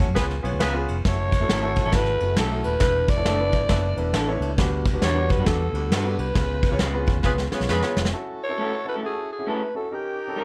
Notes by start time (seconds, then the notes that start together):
0.08 F#2
0.15 C#2 B3 C#4 F4 G#4 B4, kick, snare, ride
0.30 snare
0.41 B1 B3 C#4 F4 G#4 B4 C#5, ride
0.53 D2
0.59 C#2 F3 B3 C#4 F4 G#4 B4, snare, ride
0.73 B3 C#4 F4 G#4 B4
0.88 F1, ride
1.05 F#1 A3 C#4 E4 F#4 A4 C#5, kick, snare, ride
1.32 kick, ride
1.40 F#1 A3 C#4 E4 F#4 A4
1.49 G#1 A3 C#4 E4 A4, snare, ride
1.62 A3 C#4 E4 F#4 A4
1.76 kick, ride
1.85 A1 A3 C#4 E4 A4
1.92 G#1 A3 C#4 E4 F#4 A4 B4, kick, snare, ride
2.05 snare
2.20 F#1 A3 C#4 E4 F#4 A4, ride
2.36 B1 A3 C#4 E4 A4, snare, ride
2.51 A3 C#4 E4 F#4 A4
2.64 D#1 B4, ride
2.80 E1 B3 D4 E4 A4 B4, kick, snare, ride
3.08 D5, kick, ride
3.16 E1 B3 D4 E4 A4 C#5
3.25 F#1 A3 D4 E4 A4, snare, ride
3.39 B3 D4 E4 A4 B4
3.52 kick, ride
3.60 G#1
3.68 F#1 B3 D4 E4 A4 B4, kick, snare, ride
3.96 E1 B3 D4 E4 A4 B4, ride
4.13 A1 A3 D4 E4 A4, snare, ride
4.27 B3 D4 E4 A4 C#5
4.41 C#2, ride
4.57 D2 G3 B3 D4 F#4 G4 B4, kick, snare, ride
4.86 kick, ride
4.93 D2 B3 D4 F#4 G4 B4
5.01 E2 G3 D4 F#4 B4 C#5, snare, ride
5.15 B3 D4 F#4 G4 C#5
5.29 B4, kick, ride
5.37 F#2 G3 D4 F#4 B4
5.46 E2 B3 D4 F#4 G4 A4, kick, snare, ride
5.73 D2 B3 D4 F#4 G4 B4, ride
5.90 G2 G3 D4 F#4 B4, snare, ride
6.04 B3 D4 F#4 G4 B4
6.18 C2 B4, ride
6.34 C#2 B3 C#4 F4 G#4 B4, kick, snare, ride
6.63 kick, ride
6.70 C#2 B3 C#4 F4 G#4 C#5
6.79 C#2 G#3 C#4 F4 B4, snare, ride
6.93 B3 C#4 F4 G#4 B4
7.06 kick, ride
7.16 D2
7.23 C#2 B3 C#4 F4 G#4 B4, kick, snare
7.38 snare
7.51 B3 C#4 F4 G#4 B4 C#5, muted fingered electric bass stroke, snare
7.60 B1, snare
7.69 F2 G#3 C#4 F4 G#4 B4, snare
7.82 B3 C#4 F4 G#4 C#5, snare
7.97 F1, snare
8.05 snare
8.12 C#4 E4 F#4 A4
8.44 C#5
8.49 C#4 E4 F#4 A4
8.58 A3 C#4 E4 A4
8.85 C#4 E4 F#4 A4
8.89 B4
8.94 A3 C#4 E4 A4
9.02 C#4 E4 F#4 G#4 A4
9.33 G#4
9.39 C#4 E4 F#4 G#4
9.47 A3 C#4 E4 A4 B4
9.74 C#4 E4 F#4 A4
9.91 C#4 D#4 G4 A#4
10.27 C#4 D#4 G4 A4
10.36 G3 C#4 D#4 A#4